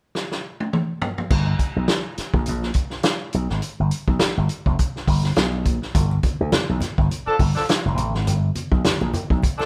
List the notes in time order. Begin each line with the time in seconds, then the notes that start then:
0.15 snare
0.32 snare
0.60 high tom
0.73 mid tom
1.02 floor tom
1.18 floor tom
1.30 G1, kick, crash
1.59 kick, closed hi-hat
1.76 B1
1.88 snare, closed hi-hat
2.18 muted slap bass stroke, snare, closed hi-hat
2.34 A#1, kick
2.46 A#1, closed hi-hat
2.63 snare
2.74 kick, closed hi-hat
2.90 snare
3.03 snare, closed hi-hat
3.33 B1, closed hi-hat
3.50 G#1, snare
3.62 closed hi-hat
3.80 G1
3.91 closed hi-hat
4.08 B1, kick
4.19 muted slap bass stroke, snare, closed hi-hat
4.37 G1
4.49 closed hi-hat
4.66 F1, kick
4.79 kick, closed hi-hat
4.96 snare
5.07 G1, kick, open hi-hat
5.23 snare
5.36 B1, snare, closed hi-hat
5.65 A#1, kick, closed hi-hat
5.82 snare
5.95 G1, kick, closed hi-hat, muted conga, low conga
6.11 muted conga
6.23 kick, closed hi-hat, high conga
6.40 D2
6.52 snare, closed hi-hat, muted conga, high conga
6.69 B1
6.80 snare, closed hi-hat, high conga, low conga
6.98 G1, kick
7.11 closed hi-hat, high conga
7.26 F3 D4 A4, muted slap bass stroke
7.39 G1, kick, open hi-hat, high conga
7.55 F3 D4 A4, snare
7.69 snare, closed hi-hat, muted conga
7.85 F1
7.97 A1, closed hi-hat, high conga
8.14 G#1, snare
8.27 G1, closed hi-hat, low conga
8.55 closed hi-hat, high conga
8.71 B1, kick
8.85 snare, closed hi-hat, muted conga, high conga
9.01 A#1, muted conga
9.14 closed hi-hat, high conga, low conga
9.30 B1, kick
9.43 kick, closed hi-hat, muted conga, high conga
9.58 F3 D4 A4, snare, muted conga